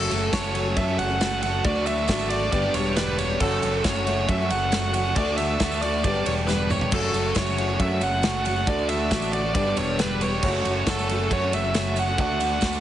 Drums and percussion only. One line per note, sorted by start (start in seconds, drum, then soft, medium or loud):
0.01 tambourine soft
0.11 ride medium
0.11 tambourine medium
0.33 kick medium
0.33 snare loud
0.33 ride medium
0.33 tambourine loud
0.44 tambourine medium
0.55 ride medium
0.77 kick medium
0.77 ride loud
0.99 ride medium
1.10 tambourine soft
1.21 snare loud
1.21 ride medium
1.21 tambourine medium
1.43 ride medium
1.43 tambourine medium
1.54 tambourine soft
1.64 kick loud
1.64 ride loud
1.75 tambourine soft
1.86 ride medium
1.86 tambourine medium
1.98 tambourine soft
2.08 kick medium
2.08 snare loud
2.08 ride loud
2.08 tambourine loud
2.19 tambourine medium
2.30 ride medium
2.52 kick medium
2.52 ride loud
2.74 ride medium
2.74 tambourine medium
2.85 tambourine soft
2.96 snare loud
2.96 ride loud
2.96 tambourine loud
3.19 ride medium
3.19 tambourine medium
3.30 tambourine soft
3.40 kick loud
3.40 crash loud
3.52 tambourine soft
3.62 ride medium
3.62 tambourine medium
3.84 kick medium
3.84 snare loud
3.84 ride medium
3.84 tambourine loud
3.96 tambourine medium
4.07 ride medium
4.29 kick medium
4.29 ride medium
4.50 ride medium
4.50 tambourine medium
4.72 snare loud
4.72 ride loud
4.72 tambourine medium
4.93 ride medium
4.93 tambourine medium
5.05 tambourine soft
5.16 kick loud
5.16 ride loud
5.27 tambourine soft
5.38 ride medium
5.38 tambourine medium
5.60 kick medium
5.60 snare loud
5.60 ride loud
5.60 tambourine medium
5.72 tambourine medium
5.82 ride medium
5.93 tambourine soft
6.04 kick medium
6.04 ride loud
6.15 tambourine soft
6.26 ride medium
6.26 tambourine medium
6.38 tambourine soft
6.49 snare medium
6.49 tambourine medium
6.70 mid tom medium
6.70 tambourine medium
6.81 floor tom medium
6.92 kick loud
6.92 crash loud
7.04 tambourine soft
7.14 ride medium
7.14 tambourine medium
7.25 tambourine soft
7.35 kick medium
7.35 snare loud
7.35 ride medium
7.35 tambourine medium
7.46 tambourine medium
7.58 ride medium
7.80 kick medium
7.80 ride medium
8.01 ride medium
8.01 tambourine medium
8.12 tambourine soft
8.23 snare loud
8.23 ride medium
8.23 tambourine medium
8.45 ride medium
8.45 tambourine medium
8.56 tambourine soft
8.67 kick loud
8.67 ride loud
8.79 tambourine soft
8.89 ride medium
8.89 tambourine medium
9.01 tambourine soft
9.11 kick medium
9.11 snare loud
9.11 ride loud
9.11 tambourine loud
9.22 tambourine medium
9.33 ride medium
9.55 kick medium
9.55 ride loud
9.77 ride medium
9.77 tambourine medium
9.88 tambourine soft
9.99 snare loud
9.99 ride loud
9.99 tambourine loud
10.21 ride medium
10.21 tambourine medium
10.43 kick loud
10.43 crash loud
10.54 tambourine soft
10.65 ride medium
10.65 tambourine medium
10.77 tambourine soft
10.87 kick medium
10.87 snare loud
10.87 ride loud
10.87 tambourine loud
10.99 tambourine medium
11.09 ride medium
11.31 kick medium
11.31 ride loud
11.53 ride medium
11.53 tambourine medium
11.64 tambourine soft
11.74 snare loud
11.74 ride medium
11.74 tambourine loud
11.96 ride medium
11.96 tambourine medium
12.07 tambourine soft
12.18 kick loud
12.18 ride medium
12.40 ride medium
12.40 tambourine medium
12.61 kick medium
12.61 snare loud
12.61 ride loud
12.61 tambourine loud
12.72 tambourine medium